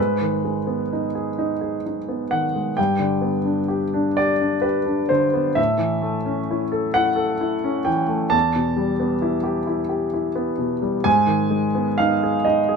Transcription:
grand piano
Already playing: G#2 B4
0.21 D#3
0.45 G#3
0.67 B3
0.93 D#4
1.15 G#4
1.38 D#4
1.61 G#4
1.86 D#4
2.09 B3
2.31 D#3 F#5
2.55 G#3
2.77 G2 G5
2.99 D3
3.22 B3
3.45 D4
3.68 G4
3.94 D4
4.17 G4 D5
4.41 D4
4.62 G4 B4
4.86 D4
5.09 D3 C5
5.34 B3
5.55 A2 E5
5.78 E3
6.02 A3
6.26 C#4
6.51 E4
6.72 A4
6.94 E4 F#5
7.16 A4
7.41 E4
7.64 C#4
7.85 E3 G5
8.08 A3
8.30 E2 A5
8.56 B2
8.77 G3
9.00 B3
9.22 E4
9.44 G4
9.67 E4
9.89 G4
10.14 E4
10.36 B3
10.59 B2
10.82 G3
11.04 G#2 G#5
11.27 D#3
11.50 G#3
11.75 B3
11.98 D#4 F5
12.23 G#4
12.45 D#4 D#5
12.69 G#4

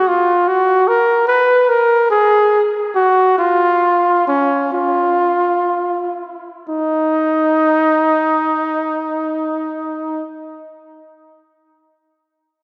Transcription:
flugelhorn
0.08 F4
0.48 F#4
0.88 A#4
1.28 B4
1.69 A#4
2.11 G#4
2.96 F#4
3.39 F4
4.28 C#4
4.73 F4
6.69 D#4

